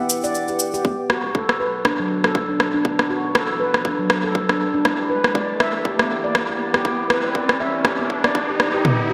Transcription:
Already playing: analog synth pad E4 B4 F#5 G5
0.09 cabasa
0.24 handpan D5, cabasa
0.35 cabasa
0.48 handpan G4, cabasa
0.59 cabasa
0.74 handpan G4, cabasa
0.84 808-style bass B1, analog synth pad B3 F#4 C#5 D5, handpan B3, kick, riser
1.10 handpan F#4, cross-stick
1.24 808-style bass B1
1.35 handpan A4, kick
1.49 cross-stick
1.60 808-style bass B1, handpan B4
1.85 handpan D4, kick, cross-stick
1.99 808-style bass B1, handpan F#3
2.24 handpan A4, cross-stick
2.35 808-style bass B1, kick
2.49 handpan D4
2.60 cross-stick
2.74 handpan D4
2.85 808-style bass B1, handpan B3, kick
2.99 cross-stick
3.10 handpan F#4
3.24 808-style bass B1
3.35 handpan A4, kick, cross-stick
3.60 808-style bass B1, handpan B4
3.74 cross-stick
3.85 handpan D4, kick
3.99 808-style bass B1, handpan F#3
4.10 cross-stick
4.24 handpan A4
4.35 808-style bass B1, kick
4.49 handpan D4, cross-stick
4.74 handpan D4
4.84 808-style bass E2, analog synth pad E4 G4 D5, kick, cross-stick
5.10 handpan B4
5.24 808-style bass E2, cross-stick
5.35 handpan D5, kick
5.60 808-style bass E2, handpan E5, cross-stick
5.85 handpan G4, kick
5.99 808-style bass E2, handpan B3, cross-stick
6.24 handpan D5
6.35 808-style bass E2, kick, cross-stick
6.49 handpan G4
6.74 handpan G4, cross-stick
6.85 808-style bass E2, handpan E4, kick
7.10 handpan B4, cross-stick
7.24 808-style bass E2
7.35 handpan D5, kick
7.49 cross-stick
7.60 808-style bass E2, handpan E5
7.85 handpan G4, kick, cross-stick
7.99 808-style bass E2, handpan B3
8.10 kick
8.24 handpan D5, cross-stick
8.35 808-style bass E2, kick
8.49 handpan G4
8.60 cross-stick
8.74 handpan G4
8.85 handpan B3, analog synth pad B3 F#4 C#5 D5, kick, mid tom
9.10 handpan F#4

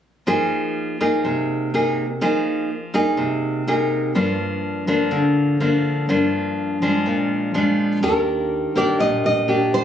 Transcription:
0.27 nylon-string guitar F3 A#3 D#4 G#4
1.01 nylon-string guitar A#3 D#4 G#4
1.25 nylon-string guitar C3
1.74 nylon-string guitar A#3 D#4 G#4
2.21 nylon-string guitar F3 A#3 D#4 G#4
2.94 nylon-string guitar A#3 D#4 G#4
3.17 nylon-string guitar C3
3.67 nylon-string guitar A#3 D#4 G#4
4.15 nylon-string guitar G2 F3 A#3 D4
4.87 nylon-string guitar F3 A#3 D4
5.11 nylon-string guitar D3
5.60 nylon-string guitar F3 A#3 D4
6.09 nylon-string guitar G2 F3 A#3 D4
6.82 nylon-string guitar F3 G#3 D4
7.06 nylon-string guitar A#2
7.54 nylon-string guitar F3 G#3 D4
8.03 upright bass D#2, nylon-string guitar D#3 A#3 D4 G4 A#4
8.75 upright bass A#1, nylon-string guitar A#3 D4 G4 D5
9.00 upright bass A#1, nylon-string guitar A#2 D#5
9.24 upright bass A#1, nylon-string guitar D#5
9.48 nylon-string guitar A#3 D4 G4
9.74 nylon-string guitar C5

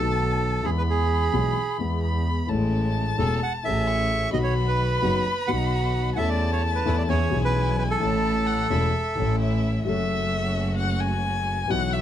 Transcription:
Already playing: double bass B1, grand piano B1 B2 D#3 A3 B3, bandoneon A4, violin A5
0.00 grand piano F#4
0.63 double bass E2, grand piano E2 E3 G#3 B3 G#4, bandoneon G#4, violin B5
0.78 bandoneon B4
0.90 bandoneon G#4
1.33 grand piano B1 B2 E3 G#3 B3 G#4, double bass B1
1.78 grand piano E2 E3 G#3 B3 G#4, double bass E2
2.03 violin B5
2.47 grand piano A1 A2 E3 A3 C#4, double bass A1, string section G#3 A3 C#4, violin A5
2.51 grand piano G#3
3.18 grand piano E1 E2 E3 A3 C#4 G#4, double bass E1, string section A3 C#4 G#4, bandoneon A4
3.43 bandoneon F#5
3.63 grand piano A1 A2 E3 A3 C#4 G#4, double bass A1, string section A3 C#4 G#4, bandoneon E5
3.87 violin C#6
4.31 grand piano B1 B2 D#3 F#3 B3 F#4, double bass B1, string section B3 D#4 F#4, bandoneon D#5, violin B5
4.43 bandoneon C#5
4.68 bandoneon B4
5.02 grand piano F#1 F#2 D#3 F#3 B3 F#4, double bass F#1, string section B3 D#4 F#4
5.46 grand piano B1 B2 D#3 F#3 B3 F#4, double bass B1, string section B3 D#4 F#4, bandoneon F#5
6.16 grand piano E2 E3 A3 C#4 A4, double bass E2, string section A3 C#4 E4, bandoneon E5 F#5, violin A5
6.29 bandoneon D5
6.53 bandoneon C#5
6.75 bandoneon B4
6.85 grand piano E2 E3 A3 C#4 A4, double bass E2, string section A3 C#4 E4
6.98 bandoneon D5
7.09 grand piano E2 E3 B3 C#4 G#4, double bass E2, string section G#3 C#4 E4, bandoneon C#5, violin G#5
7.29 grand piano B1 B2 E3 B3 C#4, double bass B1, string section G#3 C#4 E4
7.34 grand piano G#4
7.45 bandoneon B4
7.78 bandoneon B4
7.91 bandoneon A4
7.99 grand piano A1 A2 E3 A3 C#4, double bass A1, string section A3 C#4 E4, violin A5
8.03 grand piano A4
8.46 violin F#5
8.70 grand piano E1 E2 E3 A3 C#4 A4, double bass E1, string section A3 C#4 E4, violin E5
9.15 grand piano A1 A2 E3 A3 C#4 A4, double bass A1, string section A3 C#4 E4
9.40 violin E5
9.85 double bass F#1, grand piano F#2 F#3 A3 C#4 A4, string section A3 C#4 F#4, violin E5
10.78 violin F#5
11.01 violin G#5
11.68 grand piano B1 B2 E3 F#3 B3 F#4, double bass B1, string section B3 E4 F#4, violin F#5
11.93 violin E5

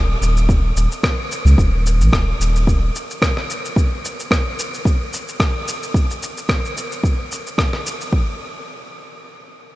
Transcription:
Already playing: sub bass D#1
0.22 sub bass D#1, shaker
0.37 shaker
0.49 kick, shaker
0.76 sub bass D#1, shaker
0.92 shaker
1.03 kick, cross-stick, shaker
1.32 shaker
1.45 sub bass C#2, shaker
1.58 sub bass D#1, kick, shaker
1.86 shaker
2.00 sub bass A#1, shaker
2.12 sub bass D#1, kick, cross-stick, shaker
2.40 sub bass D#1, shaker
2.56 shaker
2.67 kick, shaker
2.96 shaker
3.10 shaker
3.22 kick, cross-stick, shaker
3.37 cross-stick
3.51 shaker
3.65 shaker
3.76 kick, shaker
4.05 shaker
4.20 shaker
4.31 kick, cross-stick, shaker
4.59 shaker
4.74 shaker
4.85 kick, shaker
5.13 shaker
5.28 shaker
5.40 kick, cross-stick, shaker
5.68 shaker
5.83 shaker
5.94 kick, shaker
6.11 shaker
6.23 shaker
6.37 shaker
6.49 kick, cross-stick, shaker
6.65 shaker
6.77 shaker
6.92 shaker
7.04 kick, shaker
7.32 shaker
7.47 shaker
7.58 kick, cross-stick, shaker
7.73 cross-stick
7.87 shaker
8.01 shaker
8.13 kick

